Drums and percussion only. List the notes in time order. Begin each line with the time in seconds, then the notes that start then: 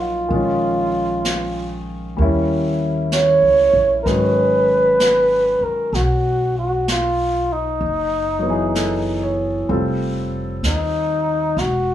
0.30 brush sweep
1.25 brush sweep, snare, hi-hat pedal
2.18 brush sweep
3.12 brush sweep, snare, hi-hat pedal
4.06 brush sweep, snare
5.00 brush sweep, snare, hi-hat pedal
5.94 brush sweep, snare
6.88 brush sweep, snare, hi-hat pedal
7.82 brush sweep
8.75 brush sweep, snare, hi-hat pedal
9.70 brush sweep
10.64 brush sweep, snare, hi-hat pedal
11.58 brush sweep, snare